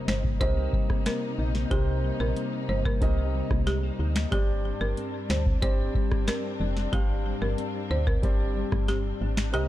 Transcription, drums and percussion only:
0.08 finger snap medium
0.08 snare loud
0.24 kick loud
0.41 kick loud
0.41 closed hi-hat medium
0.73 kick loud
0.90 kick loud
0.90 cross-stick medium
1.06 finger snap medium
1.06 snare loud
1.06 closed hi-hat medium
1.55 snare medium
1.71 kick loud
1.71 closed hi-hat medium
2.36 closed hi-hat medium
2.85 kick loud
3.02 kick loud
3.02 closed hi-hat medium
3.51 kick loud
3.51 cross-stick medium
3.67 snare medium
3.67 closed hi-hat medium
4.16 finger snap medium
4.16 snare loud
4.32 kick loud
4.32 closed hi-hat medium
4.97 closed hi-hat medium
5.30 finger snap medium
5.30 snare loud
5.46 kick loud
5.62 kick loud
5.62 closed hi-hat medium
5.95 kick medium
6.11 kick medium
6.11 cross-stick loud
6.28 finger snap medium
6.28 snare loud
6.28 closed hi-hat medium
6.77 snare medium
6.93 kick loud
6.93 closed hi-hat medium
7.58 closed hi-hat medium
8.07 kick loud
8.23 kick loud
8.23 closed hi-hat medium
8.72 kick loud
8.72 cross-stick loud
8.88 snare medium
8.88 closed hi-hat medium
9.37 finger snap medium
9.37 snare loud
9.54 closed hi-hat medium

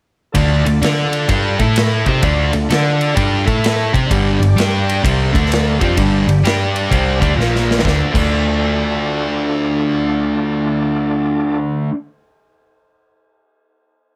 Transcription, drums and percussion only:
0.35 kick medium
0.35 ride medium
0.66 ride medium
0.83 snare loud
0.83 ride medium
1.13 ride medium
1.29 kick medium
1.29 ride medium
1.59 kick loud
1.59 ride medium
1.76 snare loud
1.76 ride medium
2.06 kick medium
2.06 ride medium
2.23 kick loud
2.23 ride medium
2.53 ride medium
2.70 snare loud
2.70 ride medium
3.01 ride medium
3.17 kick loud
3.17 ride medium
3.48 kick loud
3.48 ride medium
3.64 snare loud
3.64 ride medium
3.94 kick medium
3.94 ride medium
4.11 kick medium
4.11 ride medium
4.43 ride medium
4.58 snare loud
4.58 ride medium
4.89 ride medium
5.05 kick loud
5.05 ride loud
5.35 kick loud
5.35 ride medium
5.46 snare soft
5.52 snare loud
5.52 ride loud
5.81 kick medium
5.81 ride medium
5.97 kick loud
5.97 ride medium
6.29 ride medium
6.45 snare loud
6.45 ride medium
6.76 ride medium
6.92 kick loud
6.92 ride medium
7.22 kick loud
7.22 ride medium
7.40 snare medium
7.56 snare medium
7.71 snare medium
7.79 snare medium
7.85 kick loud
7.85 snare medium
8.15 kick loud
8.15 crash medium

